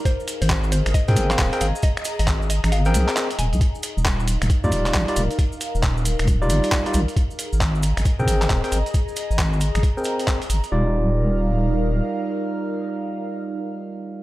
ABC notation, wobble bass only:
X:1
M:4/4
L:1/16
Q:"Swing 16ths" 1/4=135
K:Eb
V:1 name="Wobble bass" clef=bass
z3 A,,,4 A,,, z A,, A,,,2 E,,, z A,,, z | z3 A,,,4 A,,,3 C,, z3 E,,, C,, | z3 E,,,4 E,,, z E,, E,,,2 B,,, z E,,, z | z3 E,,,4 E,,,3 G,,, z3 B,,, z |
z3 A,,,4 A,,, z A,, A,,,2 E,,, z A,,, z | z3 A,,,4 A,,, z6 A,,, z | E,,,12 z4 | z16 |]